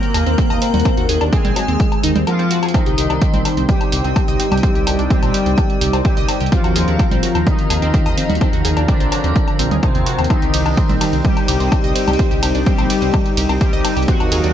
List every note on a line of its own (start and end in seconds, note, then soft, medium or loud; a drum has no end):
0.00 2.73 C3 medium
0.00 1.23 A#3 loud
0.00 1.23 A#3 medium
0.00 2.73 C4 medium
0.00 1.23 A#4 loud
0.00 closed hi-hat soft
0.14 0.24 D#2 medium
0.14 0.23 G#4 medium
0.14 0.23 G#5 medium
0.14 open hi-hat loud
0.14 low woodblock medium
0.26 0.36 D#2 medium
0.26 0.32 C4 loud
0.26 0.32 C5 medium
0.26 closed hi-hat soft
0.38 0.47 C4 medium
0.38 0.47 C5 medium
0.38 kick loud
0.38 closed hi-hat medium
0.50 0.59 D#2 medium
0.50 0.56 D#5 loud
0.50 0.56 D#6 medium
0.50 closed hi-hat soft
0.50 low woodblock medium
0.62 0.68 C4 medium
0.62 0.68 C5 medium
0.62 open hi-hat medium
0.74 0.83 D#2 medium
0.74 0.79 F#4 medium
0.74 0.80 F#5 medium
0.74 closed hi-hat soft
0.74 low conga medium
0.80 closed hi-hat medium
0.85 0.91 C4 loud
0.85 0.91 C5 medium
0.85 kick loud
0.85 closed hi-hat medium
0.85 low woodblock medium
0.97 1.07 D#2 medium
0.97 1.03 F#4 medium
0.97 1.03 F#5 medium
0.97 closed hi-hat soft
1.09 1.19 D#2 loud
1.09 1.18 G#4 medium
1.09 1.18 G#5 medium
1.09 open hi-hat loud
1.21 1.30 D#2 medium
1.21 1.27 D4 medium
1.21 1.27 D5 medium
1.21 closed hi-hat soft
1.21 low woodblock medium
1.33 2.18 G#3 loud
1.33 2.18 G#3 medium
1.33 1.42 C4 medium
1.33 2.18 G#4 loud
1.33 1.42 C5 medium
1.33 kick loud
1.33 closed hi-hat medium
1.45 1.54 A#1 medium
1.45 1.53 C4 loud
1.45 1.53 C5 medium
1.45 closed hi-hat soft
1.45 low conga medium
1.56 1.60 F#3 medium
1.56 1.60 F#4 medium
1.56 open hi-hat medium
1.56 low woodblock soft
1.68 1.77 D#2 medium
1.68 1.72 C4 medium
1.68 1.72 C5 medium
1.68 closed hi-hat soft
1.80 kick loud
1.80 closed hi-hat medium
1.92 closed hi-hat soft
1.92 low woodblock medium
2.04 2.13 D#2 medium
2.04 2.09 D#4 loud
2.04 2.09 D#5 medium
2.04 open hi-hat loud
2.16 2.25 D#2 medium
2.16 2.19 C4 medium
2.16 2.19 C5 medium
2.16 closed hi-hat soft
2.16 low conga medium
2.27 2.71 F3 medium
2.27 2.33 A#3 medium
2.27 2.71 F4 medium
2.27 2.33 A#4 medium
2.27 closed hi-hat medium
2.27 low woodblock medium
2.39 2.48 C4 medium
2.39 2.48 C5 medium
2.39 closed hi-hat soft
2.51 2.60 F#4 loud
2.51 2.60 F#5 medium
2.51 open hi-hat medium
2.63 2.68 G#4 medium
2.63 2.68 G#5 medium
2.63 closed hi-hat soft
2.63 low woodblock medium
2.69 closed hi-hat medium
2.74 14.53 C3 medium
2.74 3.60 D#3 loud
2.74 3.60 D#3 medium
2.74 14.53 C4 medium
2.74 2.80 C4 loud
2.74 6.49 D#4 medium
2.74 3.60 D#4 loud
2.74 14.04 A#4 medium
2.74 4.61 C5 medium
2.74 2.80 C5 medium
2.74 6.49 G5 medium
2.74 kick loud
2.74 closed hi-hat medium
2.74 low woodblock medium
2.86 2.96 C2 medium
2.86 2.92 G4 medium
2.86 2.92 G5 medium
2.86 closed hi-hat soft
2.98 3.07 C2 medium
2.98 3.07 G4 medium
2.98 3.07 G5 medium
2.98 open hi-hat loud
3.10 3.19 C2 medium
3.10 3.16 D4 medium
3.10 3.16 D5 medium
3.10 closed hi-hat soft
3.10 low woodblock medium
3.22 3.30 C4 medium
3.22 3.30 C5 medium
3.22 kick loud
3.22 closed hi-hat medium
3.34 3.43 A#1 medium
3.34 3.42 C4 loud
3.34 3.42 C5 medium
3.34 closed hi-hat soft
3.34 low conga medium
3.45 3.49 G3 medium
3.45 3.49 G4 medium
3.45 open hi-hat medium
3.45 low woodblock soft
3.57 3.66 C2 medium
3.57 3.61 C4 medium
3.57 3.61 C5 medium
3.57 closed hi-hat soft
3.69 5.01 G3 loud
3.69 5.01 G3 medium
3.69 5.01 G4 loud
3.69 kick loud
3.69 closed hi-hat medium
3.69 low conga medium
3.81 closed hi-hat soft
3.81 low woodblock medium
3.92 4.02 C2 medium
3.92 4.01 G4 medium
3.92 4.01 G5 medium
3.92 open hi-hat loud
4.04 4.14 C2 medium
4.04 4.10 C4 loud
4.04 4.10 C5 medium
4.04 closed hi-hat soft
4.16 4.25 C4 medium
4.16 4.25 C5 medium
4.16 kick loud
4.16 closed hi-hat medium
4.16 low woodblock medium
4.28 4.37 C2 medium
4.28 4.34 D#5 loud
4.28 4.34 D#6 medium
4.28 closed hi-hat soft
4.40 4.46 C4 medium
4.40 4.46 C5 medium
4.40 open hi-hat loud
4.52 4.61 C2 medium
4.52 4.57 G4 medium
4.52 4.57 G5 medium
4.52 closed hi-hat soft
4.52 low conga medium
4.52 low woodblock medium
4.57 closed hi-hat medium
4.63 4.69 C4 loud
4.63 4.69 C5 medium
4.63 6.50 D5 medium
4.63 kick loud
4.63 closed hi-hat medium
4.75 4.84 C2 medium
4.75 4.81 G4 medium
4.75 4.81 G5 medium
4.75 closed hi-hat soft
4.87 4.96 C2 loud
4.87 4.96 G4 medium
4.87 4.96 G5 medium
4.87 open hi-hat loud
4.87 low woodblock medium
4.99 5.08 C2 medium
4.99 5.05 D4 medium
4.99 5.05 D5 medium
4.99 closed hi-hat soft
5.10 5.96 G3 loud
5.10 5.96 G3 medium
5.10 5.19 C4 medium
5.10 5.96 G4 loud
5.10 5.19 C5 medium
5.10 kick loud
5.10 closed hi-hat medium
5.22 5.32 A#1 medium
5.22 5.31 C4 loud
5.22 5.31 C5 medium
5.22 closed hi-hat soft
5.22 low woodblock medium
5.34 5.38 G3 medium
5.34 5.38 G4 medium
5.34 open hi-hat loud
5.46 5.55 C2 medium
5.46 5.50 C4 medium
5.46 5.50 C5 medium
5.46 closed hi-hat soft
5.58 kick loud
5.58 closed hi-hat medium
5.58 low woodblock soft
5.70 closed hi-hat soft
5.81 5.91 C2 medium
5.81 5.90 G4 medium
5.81 5.90 G5 medium
5.81 open hi-hat loud
5.93 6.03 C2 medium
5.93 5.99 C4 loud
5.93 5.99 C5 medium
5.93 closed hi-hat soft
5.93 low woodblock medium
6.05 6.48 G3 loud
6.05 6.48 G3 medium
6.05 6.14 C4 medium
6.05 6.48 G4 medium
6.05 6.14 C5 medium
6.05 kick loud
6.05 closed hi-hat medium
6.17 6.26 C2 medium
6.17 6.23 D#5 loud
6.17 6.23 D#6 medium
6.17 closed hi-hat medium
6.29 6.35 C4 medium
6.29 6.35 C5 medium
6.29 open hi-hat loud
6.29 low woodblock medium
6.40 6.50 C2 medium
6.40 6.46 G4 medium
6.40 6.46 G5 medium
6.40 closed hi-hat soft
6.46 closed hi-hat medium
6.52 7.37 F3 loud
6.52 7.37 F3 medium
6.52 10.27 F3 medium
6.52 6.58 C4 loud
6.52 7.37 F4 loud
6.52 6.58 C5 medium
6.52 10.26 F5 medium
6.52 10.26 A#5 medium
6.52 kick loud
6.52 closed hi-hat medium
6.64 6.74 D#2 medium
6.64 6.70 F#4 medium
6.64 6.70 F#5 medium
6.64 closed hi-hat soft
6.64 low woodblock medium
6.76 6.85 D#2 medium
6.76 6.85 G#4 medium
6.76 6.85 G#5 medium
6.76 open hi-hat loud
6.88 6.97 D#2 medium
6.88 6.94 D4 medium
6.88 6.94 D5 medium
6.88 closed hi-hat soft
6.99 7.08 C4 medium
6.99 7.08 C5 medium
6.99 kick loud
6.99 closed hi-hat medium
6.99 low woodblock medium
7.11 7.21 A#1 medium
7.11 7.20 C4 loud
7.11 7.20 C5 medium
7.11 closed hi-hat soft
7.11 low conga medium
7.23 7.27 F#3 medium
7.23 7.27 F#4 medium
7.23 open hi-hat loud
7.35 7.44 D#2 medium
7.35 7.39 C4 medium
7.35 7.39 C5 medium
7.35 closed hi-hat soft
7.35 low woodblock medium
7.47 8.79 D#3 loud
7.47 8.79 D#3 medium
7.47 8.79 D#4 loud
7.47 kick loud
7.47 closed hi-hat medium
7.47 low conga medium
7.59 closed hi-hat soft
7.70 7.80 D#2 medium
7.70 7.79 G#4 medium
7.70 7.79 G#5 medium
7.70 open hi-hat loud
7.70 low woodblock medium
7.82 7.92 D#2 medium
7.82 7.88 C4 loud
7.82 7.88 C5 medium
7.82 closed hi-hat soft
7.94 8.03 C4 medium
7.94 8.03 C5 medium
7.94 kick loud
7.94 closed hi-hat medium
8.06 8.15 D#2 medium
8.06 8.12 D#5 loud
8.06 8.12 D#6 medium
8.06 closed hi-hat soft
8.06 low woodblock medium
8.18 8.23 C4 medium
8.18 8.23 C5 medium
8.18 open hi-hat loud
8.30 8.39 D#2 medium
8.30 8.35 F#4 medium
8.30 8.35 F#5 medium
8.30 closed hi-hat soft
8.30 low conga medium
8.35 closed hi-hat medium
8.41 8.47 C4 loud
8.41 8.47 C5 medium
8.41 kick loud
8.41 closed hi-hat medium
8.41 low woodblock medium
8.53 8.62 D#2 medium
8.53 8.59 F#4 medium
8.53 8.59 F#5 medium
8.53 closed hi-hat soft
8.65 8.74 D#2 medium
8.65 8.74 G#4 medium
8.65 8.74 G#5 medium
8.65 open hi-hat loud
8.77 8.86 D#2 medium
8.77 8.83 D4 medium
8.77 8.83 D5 medium
8.77 closed hi-hat soft
8.77 low woodblock medium
8.88 9.74 D3 loud
8.88 9.74 D3 medium
8.88 8.97 C4 medium
8.88 9.74 D4 loud
8.88 8.97 C5 medium
8.88 kick loud
8.88 closed hi-hat medium
9.00 9.10 A#1 medium
9.00 9.09 C4 loud
9.00 9.09 C5 medium
9.00 closed hi-hat soft
9.12 9.16 F#3 medium
9.12 9.16 F#4 medium
9.12 open hi-hat loud
9.12 low woodblock medium
9.24 9.33 D#2 medium
9.24 9.27 C4 medium
9.24 9.27 C5 medium
9.24 closed hi-hat soft
9.36 kick loud
9.36 closed hi-hat medium
9.48 closed hi-hat soft
9.48 low woodblock medium
9.59 9.69 A#1 medium
9.59 9.68 C4 medium
9.59 9.68 C5 medium
9.59 open hi-hat loud
9.71 9.81 D#2 medium
9.71 9.77 G#4 medium
9.71 9.77 G#5 medium
9.71 closed hi-hat soft
9.71 low conga medium
9.83 10.26 C3 medium
9.83 10.26 C4 medium
9.83 9.89 D#4 medium
9.83 9.89 D#5 medium
9.83 kick loud
9.83 closed hi-hat medium
9.83 low woodblock medium
9.95 10.04 D#2 medium
9.95 10.03 C4 medium
9.95 10.03 C5 medium
9.95 closed hi-hat soft
10.06 10.15 F#4 medium
10.06 10.15 F#5 medium
10.06 open hi-hat loud
10.18 10.28 D#2 medium
10.18 10.24 C4 medium
10.18 10.24 C5 medium
10.18 closed hi-hat soft
10.18 low woodblock medium
10.24 closed hi-hat medium
10.30 11.15 D#3 loud
10.30 11.15 D#3 medium
10.30 10.36 C4 loud
10.30 14.53 D#4 medium
10.30 11.15 D#4 loud
10.30 10.36 C5 medium
10.30 14.04 C5 medium
10.30 14.04 G5 medium
10.30 kick loud
10.30 closed hi-hat medium
10.30 low woodblock medium
10.42 10.51 C2 medium
10.42 10.48 G4 medium
10.42 10.48 G5 medium
10.42 closed hi-hat soft
10.54 10.63 C2 loud
10.54 10.63 G4 medium
10.54 10.63 G5 medium
10.54 open hi-hat loud
10.54 ride medium
10.66 10.75 C2 medium
10.66 10.71 D4 medium
10.66 10.71 D5 medium
10.66 closed hi-hat soft
10.66 low woodblock medium
10.77 10.86 C4 medium
10.77 10.86 C5 medium
10.77 kick loud
10.77 closed hi-hat medium
10.89 10.99 A#1 medium
10.89 10.98 C4 loud
10.89 10.98 C5 medium
10.89 closed hi-hat soft
10.89 low conga medium
11.01 11.05 G3 medium
11.01 11.05 G4 medium
11.01 open hi-hat medium
11.01 ride medium
11.01 low woodblock medium
11.13 11.22 C2 medium
11.13 11.16 C4 medium
11.13 11.16 C5 medium
11.13 closed hi-hat soft
11.24 12.57 G3 loud
11.24 12.57 G3 medium
11.24 12.57 G4 loud
11.24 kick loud
11.24 closed hi-hat medium
11.24 low conga medium
11.37 closed hi-hat soft
11.37 low woodblock medium
11.48 11.58 C2 medium
11.48 11.57 G4 medium
11.48 11.57 G5 medium
11.48 open hi-hat loud
11.48 ride medium
11.60 11.70 C2 medium
11.60 11.66 C4 loud
11.60 11.66 C5 medium
11.60 closed hi-hat soft
11.72 11.81 C4 medium
11.72 11.81 C5 medium
11.72 kick loud
11.72 closed hi-hat medium
11.72 low woodblock medium
11.84 11.93 C2 medium
11.84 11.90 D#5 loud
11.84 11.90 D#6 medium
11.84 closed hi-hat soft
11.95 12.01 C4 medium
11.95 12.01 C5 medium
11.95 open hi-hat medium
11.95 ride medium
12.07 12.17 C2 medium
12.07 12.13 G4 medium
12.07 12.13 G5 medium
12.07 closed hi-hat soft
12.07 low conga medium
12.07 low woodblock medium
12.13 closed hi-hat medium
12.19 12.25 C4 loud
12.19 12.25 C5 medium
12.19 kick loud
12.19 closed hi-hat medium
12.31 12.40 C2 medium
12.31 12.37 G4 medium
12.31 12.37 G5 medium
12.31 closed hi-hat soft
12.43 12.52 C2 loud
12.43 12.52 G4 medium
12.43 12.52 G5 medium
12.43 open hi-hat loud
12.43 ride medium
12.43 low woodblock medium
12.55 12.64 C2 medium
12.55 12.60 D4 medium
12.55 12.60 D5 medium
12.55 closed hi-hat soft
12.66 13.52 G3 medium
12.66 13.52 G3 loud
12.66 12.75 C4 medium
12.66 13.52 G4 loud
12.66 12.75 C5 medium
12.66 kick loud
12.66 closed hi-hat medium
12.78 12.88 A#1 medium
12.78 12.87 C4 loud
12.78 12.87 C5 medium
12.78 closed hi-hat soft
12.78 low woodblock medium
12.90 12.94 G3 medium
12.90 12.94 G4 medium
12.90 open hi-hat medium
12.90 ride medium
13.02 13.11 C2 medium
13.02 13.05 C4 medium
13.02 13.05 C5 medium
13.02 closed hi-hat soft
13.14 kick loud
13.14 closed hi-hat medium
13.14 low woodblock medium
13.26 closed hi-hat soft
13.37 13.47 C2 loud
13.37 13.46 G4 medium
13.37 13.46 G5 medium
13.37 open hi-hat loud
13.37 ride medium
13.49 13.59 C2 medium
13.49 13.55 C4 loud
13.49 13.55 C5 medium
13.49 closed hi-hat soft
13.49 low woodblock medium
13.61 14.04 G3 medium
13.61 14.04 G3 loud
13.61 13.70 C4 medium
13.61 14.04 G4 medium
13.61 13.70 C5 medium
13.61 kick loud
13.61 closed hi-hat medium
13.73 13.82 C2 medium
13.73 13.79 D#5 loud
13.73 13.79 D#6 medium
13.73 closed hi-hat soft
13.84 13.90 C4 medium
13.84 13.90 C5 medium
13.84 open hi-hat medium
13.84 ride medium
13.84 low woodblock medium
13.97 14.06 C2 medium
13.97 14.02 G4 medium
13.97 14.02 G5 medium
13.97 closed hi-hat soft
14.02 closed hi-hat medium
14.08 14.53 F#3 loud
14.08 14.53 F#3 medium
14.08 14.14 C4 loud
14.08 14.53 F#4 loud
14.08 14.53 A#4 medium
14.08 14.14 C5 medium
14.08 14.53 D#5 medium
14.08 14.53 F5 medium
14.08 kick loud
14.08 closed hi-hat medium
14.20 14.29 D#2 medium
14.20 14.26 F#4 medium
14.20 14.26 F#5 medium
14.20 closed hi-hat soft
14.20 low woodblock medium
14.32 14.41 D#2 loud
14.32 14.41 G#4 medium
14.32 14.41 G#5 medium
14.32 open hi-hat loud
14.32 ride medium
14.44 14.53 D#2 medium
14.44 14.50 D4 medium
14.44 14.49 D5 medium
14.44 closed hi-hat soft